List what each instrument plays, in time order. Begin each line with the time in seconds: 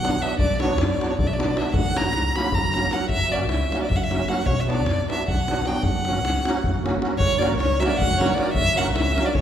Already playing: fingered electric bass B1, violin F#5
0.02 accordion F#3 B3 D4 F#4, davul high
0.13 davul high
0.19 accordion F#3 B3 D4 F#4, violin E5
0.38 fingered electric bass B1, violin D5, davul low
0.50 davul high
0.59 accordion F#3 B3 D4 F#4, violin C#5, davul high
0.70 davul high
0.78 fingered electric bass F#2, violin D5, davul high
0.90 davul high
1.00 accordion F#3 B3 D4 F#4, davul high
1.10 violin C#5, davul high
1.19 fingered electric bass B1, violin D5, davul low
1.27 violin E5, davul high
1.33 accordion F#3 B3, violin D5
1.38 accordion D4 F#4, davul high
1.49 davul high
1.54 accordion F#3 B3 D4 F#4, davul high
1.58 violin E5
1.67 davul high
1.74 fingered electric bass F#1, violin F#5, davul low
1.86 davul high
1.93 accordion F#3 A#3 C#4 F#4, davul high
1.98 violin A#5
2.04 davul high
2.13 fingered electric bass C#2, davul high
2.34 accordion F#3 A#3 C#4 F#4, violin B5, davul high
2.44 davul high
2.52 fingered electric bass F#1, violin A#5, davul low
2.73 accordion F#3 A#3 C#4 F#4, davul high
2.83 davul high
2.89 accordion F#3 A#3 C#4 F#4, davul high
2.93 violin F#5
3.09 fingered electric bass F#1, violin E5, davul low
3.22 davul high
3.29 accordion F#3 A#3 C#4 F#4, violin D5
3.40 davul high
3.49 fingered electric bass C#2, violin E5, davul high
3.70 accordion F#3 A#3 C#4 F#4, davul high
3.82 violin D5, davul high
3.89 fingered electric bass F#1, violin E5, davul low
3.96 violin F#5
4.04 violin E5
4.10 accordion F#3 A#3 C#4 F#4, davul high
4.20 davul high
4.27 accordion F#3 A#3 C#4 F#4, violin F#5, davul high
4.46 fingered electric bass B1, violin C#5, davul low
4.60 violin E5
4.67 accordion F#3 B3 D4 F#4, violin D5, davul high
4.79 davul high
4.86 fingered electric bass F#2, davul high
5.08 accordion F#3 B3 D4 F#4, violin E5, davul high
5.19 davul high
5.28 fingered electric bass B1, violin F#5, davul low
5.48 accordion F#3 B3 D4 F#4, davul high
5.58 davul high
5.64 accordion F#3 B3 D4 F#4, violin G5, davul high
5.83 fingered electric bass F#1, violin F#5, davul low
5.94 davul high
6.05 accordion F#3 A#3 C#4 F#4, davul high
6.15 davul high
6.24 fingered electric bass C#2, davul high
6.35 davul high
6.45 accordion F#3 A#3 C#4 F#4, davul high
6.56 davul high
6.64 fingered electric bass F#1, davul low
6.76 davul high
6.83 accordion F#3 A#3 C#4 F#4, davul high
6.94 davul high
7.00 accordion F#3 A#3 C#4 F#4, davul high
7.11 davul high
7.18 fingered electric bass F#1, violin C#5, davul low
7.31 davul high
7.39 accordion F#3 A#3 C#4 F#4 A#4, violin D5, davul high
7.52 davul high
7.58 fingered electric bass C#2, violin C#5, davul high
7.72 davul high
7.79 accordion F#3 A#3 C#4 F#4 A#4, violin E5, davul high
7.87 violin D5 E5
7.97 fingered electric bass F#1, violin F#5
8.02 davul low
8.11 davul high
8.17 accordion F#3 A#3 C#4 F#4 A#4, violin C#5
8.21 davul high
8.30 davul high
8.34 accordion F#3 A#3 C#4 F#4 A#4, violin D5, davul high
8.47 davul high
8.54 fingered electric bass F#1, violin E5, davul low
8.67 davul high
8.74 accordion F#3 A#3 C#4 F#4 A#4, violin F#5
8.79 davul high
8.87 davul high
8.94 fingered electric bass C#2, violin E5, davul high
9.07 davul high
9.15 accordion F#3 A#3 C#4 F#4 A#4, davul high
9.25 violin D5
9.34 fingered electric bass F#1, violin C#5, davul low